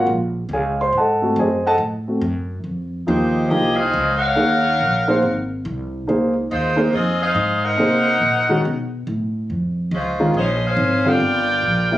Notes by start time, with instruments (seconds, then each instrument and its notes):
Already playing: grand piano G#3 A#3 F4
0.07 upright bass A#1
0.49 upright bass C#2
0.53 grand piano G#4 C#5 F5 G#5
0.81 grand piano C5 C6
0.93 upright bass G#2
0.97 grand piano A4 D#5 F#5 A5
1.22 grand piano A3 C4 F#4
1.36 upright bass F#2, grand piano G#4 C5 D#5 G#5
1.67 grand piano A4 D#5 F#5 A5
1.78 upright bass A2
2.08 grand piano A3 C4 F#4
2.21 upright bass F#2
2.64 upright bass F2
3.07 upright bass D#2, grand piano F3 A#3 D#4 G4, saxophone section G#3 D#4 G4 C5
3.48 upright bass C2, grand piano F3 A#3 D#4 G4, saxophone section C4 G4 G#4 D#5
3.76 saxophone section D#4 G#4 C5 F5
3.94 upright bass C#2
4.17 saxophone section C#4 A#4 F5 F#5
4.35 upright bass D#2, grand piano A#3 D#4 G#4 C#5
4.80 upright bass A#1
5.08 grand piano A#3 D#4 G#4 C5
5.22 upright bass G#1
5.65 upright bass C2
6.07 upright bass C#2, grand piano A#3 D#4 G#4 C5
6.50 upright bass D#2, saxophone section G#3 D#4 F4 C5
6.76 grand piano A#3 D#4 G#4 C5
6.93 upright bass F2, saxophone section C4 F4 G#4 D#5
7.22 saxophone section D#4 G#4 C5 F5
7.35 upright bass G#2
7.64 saxophone section D#4 A#4 C5 F#5
7.77 upright bass C3, grand piano A#3 D#4 G#4 C5
8.21 upright bass A#2
8.49 grand piano D#3 G#3 C#4 F#4
8.65 upright bass B2
9.07 upright bass A2
9.50 upright bass F2
9.91 upright bass C#2, saxophone section G#3 C#4 F4 C5
10.20 grand piano D#3 G#3 C#4 F4
10.34 upright bass A#1, saxophone section C#4 G#4 C5 D#5
10.66 saxophone section C#4 G#4 C5 F5
10.77 upright bass G#1
11.05 grand piano D3 G3 C4 F4, saxophone section F4 A#4 D5 G5
11.20 upright bass G1
11.63 upright bass A#1
11.91 grand piano G3 A#3 C#4 E4